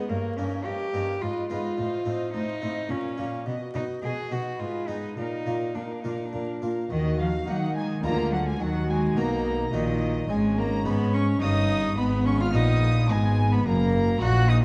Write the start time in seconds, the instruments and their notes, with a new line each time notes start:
Already playing: cello B3
0.10 harpsichord G2, cello section G2, cello A#3, viola section A#4, violin section C#5 D#5
0.37 harpsichord G2 A#3 C#4 D#4, cello section G2, cello C#4, viola section A#4, violin section C#5 D#5
0.65 harpsichord G2, cello section G2, cello G4, viola section A#4, violin section C#5 D#5
0.94 harpsichord G2 A#3 C#4 D#4, cello section G2, viola section A#4, violin section C#5 D#5
1.21 harpsichord G#2, cello section G#2, cello F4, viola section B4, violin section D#5
1.49 harpsichord G#2 G#3 B3 D#4, cello section G#2, cello F4, viola section B4, violin section D#5
1.78 harpsichord A2, cello section A2, viola section C5, violin section D#5 F5
2.05 harpsichord A2 C4 D#4, cello section A2, viola section C5, violin section D#5 F5
2.34 cello section A2, harpsichord A2, cello D#4, viola section C5, violin section D#5 F5
2.61 cello section A2, harpsichord A2 C4 D#4, viola section C5, violin section D#5 F5
2.89 harpsichord A#2, cello section A#2, cello C#4, viola section A#4, violin section C#5 F5
3.18 harpsichord A#2 A#3 C#4, cello section A#2, viola section A#4, violin section C#5 F5
3.46 harpsichord B2, cello section B2, cello B3, viola section F#4, violin section D#5
3.74 harpsichord B2 B3 D#4, cello section B2, cello D#4, viola section F#4, violin section D#5
4.02 harpsichord B2, cello section B2, viola section F#4, cello G#4, violin section D#5
4.31 harpsichord B2 B3 D#4, cello section B2, viola section F#4, cello F#4, violin section D#5
4.60 cello section G#2, harpsichord G#2, cello F4, viola section B4, violin section D#5 G#5
4.88 harpsichord G#2 G#3 B3 D#4, cello section G#2, cello D#4, viola section B4, violin section D#5 G#5
5.17 cello section A#2, harpsichord A#2, cello D#4, viola section A#4, violin section A#4 F5
5.45 cello section A#2, harpsichord A#2 A#3 F4, violin section A#4 F5, viola section A#4
5.75 harpsichord A#2, cello section A#2, cello D4, violin section A#4 F5, viola section A#4
5.84 cello D#4
5.92 cello D4
6.01 harpsichord A#2 A#3, cello section A#2, cello D#4, violin section A#4 F5
6.05 harpsichord F4, viola section A#4
6.09 cello D4
6.17 cello D#4
6.26 cello D4
6.33 harpsichord A#2, cello section A#2, violin section A#4 F5, viola section A#4
6.62 harpsichord A#2 A#3 F4, cello section A#2, violin section A#4 F5, viola section A#4
6.90 double bass section D#2, harpsichord D#3, cello D#3, cello section D#3, viola section F#4, violin section D#5
7.19 cello F3, violin section F5
7.47 double bass section D#3, cello F#3, harpsichord A#3 D#4, cello section D#4, viola section D#4, violin section F#5
7.76 cello G#3, violin section G#5
8.04 double bass section D2, harpsichord D3 G#3 A#3 F4, cello section D3, cello A#3, viola section F4, violin section A#5
8.32 cello F#3, violin section F#5
8.46 cello G#3, violin section G#5
8.60 double bass section D#2, harpsichord D#3, cello section D#3, cello F#3, viola section F#4, violin section F#5
8.89 cello G#3, violin section G#5
9.17 double bass section B1, harpsichord B2 A#3 D#4 F#4, cello section B2, cello A#3, viola section D#4, violin section A#5
9.73 double bass section A#1, harpsichord A#2 A#3 D#4 F#4, cello section A#2, cello D#3, viola section D#4, violin section D#5
10.29 double bass section G#1, cello section G#2, harpsichord G#2 G#3, cello G#3, viola section C#4, violin section G#5
10.57 cello A#3, violin section A#5
10.85 double bass section G#2, harpsichord G#3 B3 D#4 G#4, cello section G#3, cello B3, violin section B5
11.13 cello C#4, violin section C#6
11.41 double bass section G1, harpsichord G2 C#4 D#4 A#4, cello section G2, cello D#4, violin section D#6
11.97 double bass section G#1, harpsichord G#2 G#3, cello section G#2, viola section B3, cello B3, violin section B5
12.26 cello C#4, violin section C#6
12.39 cello F4, violin section F6
12.53 double bass section A#1, cello section A#2, harpsichord A#2 B3 D#4 D#5, cello D#4, violin section D#6
13.10 double bass section G#1, harpsichord G#2 B3 D#4 D#5, cello section G#2, cello G#3, viola section B3, violin section G#5
13.51 cello B3, violin section B5
13.65 double bass section F#1, harpsichord F#2, cello section F#2, viola section A#3, cello A#3, violin section A#5
14.21 double bass section A#1, harpsichord A#2 A#3 D#4 D#5, cello section A#2, viola section A#3, cello F#4, violin section F#6
14.49 cello D#4, violin section D#6